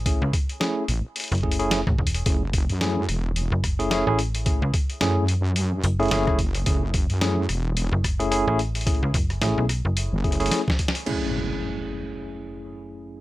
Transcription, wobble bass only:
X:1
M:4/4
L:1/16
Q:"Swing 16ths" 1/4=109
K:F#m
V:1 name="Wobble bass" clef=bass
z6 A,,, z8 z | F,,,3 F,,3 E,,,3 z6 z | z4 F,,6 z2 F,,,4 | F,,,3 F,,3 E,,,3 z6 z |
z8 z F,,,3 z4 | z16 |]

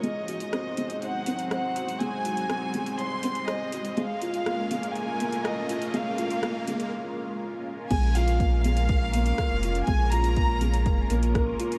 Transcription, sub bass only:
X:1
M:4/4
L:1/16
Q:1/4=122
K:Db
V:1 name="Sub bass" clef=bass
z16 | z16 | z16 | z16 |
B,,,12 z F,,,3 | B,,,8 F,,, z B,,,4 z2 |]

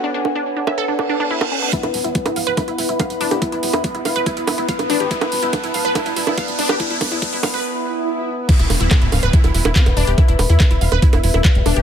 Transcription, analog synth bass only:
X:1
M:4/4
L:1/16
Q:1/4=142
K:Ddor
V:1 name="Analog synth bass" clef=bass
z16 | z E,,, E,,, E,,, z D,,, D,,, D,,, z E,,, E,,, E,,, z E,,, E,,, E,,, | z E,,, E,,, E,, z E,,, E,,, E,,, z F,,, F,,, F,,, z A,,, A,,, A,,, | z E,,, E,,, E,,, z D,,, D,,, D,,, z E,,, E,,, E,,, z E,,, E,,, E,,, |
z E,,, E,,, E,, z E,,, E,,, E,,, z8 | z E,,, E,,, E,,, z D,,, D,,, D,,, z E,,, E,,, E,,, z E,,, E,,, E,,, | z E,,, E,,, E,, z E,,, E,,, E,,, z F,,, E,,, E,,, z E,,, E,,, E,,, |]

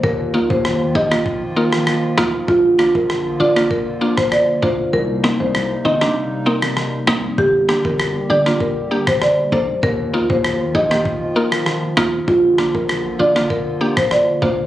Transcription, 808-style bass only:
X:1
M:4/4
L:1/16
Q:1/4=98
K:Eblyd
V:1 name="808-style bass" clef=bass
E,,3 E,,3 B,,,2 z6 D,, z | B,,,3 B,,,3 B,,,2 z6 D,, z | C,,3 C,,3 G,,,2 z6 B,,, z | G,,,3 G,,,3 G,,,2 z6 B,,, z |
E,,3 E,,3 B,,,2 z6 D,, z | B,,,3 B,,,3 B,,,2 z6 D,, z |]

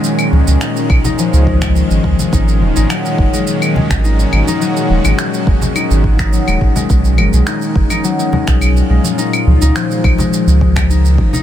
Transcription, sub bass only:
X:1
M:4/4
L:1/16
Q:1/4=105
K:C#mix
V:1 name="Sub bass" clef=bass
z2 C,, C,, z2 B,,, z2 C,,3 z G,,, C,, z | G,,,2 D,,, G,,, z2 F,,, z4 G,,,2 z G,,, z | z2 D,,, G,,, z2 F,,, z2 G,,,3 z D,,, G,,, z | B,,,2 F,,, B,,, z2 F,,, z4 B,,,2 z B,,, z |
z2 C,, C,, z2 B,,, z2 C,,4- C,, G,,, z |]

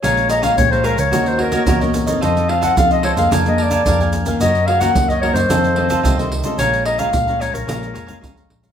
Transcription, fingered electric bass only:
X:1
M:4/4
L:1/16
Q:1/4=110
K:Bbm
V:1 name="Fingered electric bass" clef=bass
B,,,4 B,,3 D,, E,,4 =E,,4 | F,,4 F,3 F,, F,,4 F,,4 | G,,4 G,3 G,, F,,4 C,,4 | B,,,4 B,,3 B,,, B,,,2 F,,,2 A,,,2 B,,,2 |]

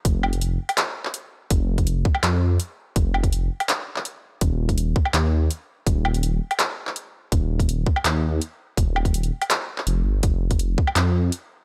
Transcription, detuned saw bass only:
X:1
M:4/4
L:1/8
Q:1/4=165
K:Ebmix
V:1 name="Detuned saw bass" clef=bass
F,,,3 z4 z | F,,,3 z F,,2 z2 | F,,,3 z4 z | E,,,3 z E,,2 z2 |
E,,,3 z4 z | E,,,3 z E,,2 z2 | E,,,3 z3 F,,, G,,, | F,,,3 z F,,2 z2 |]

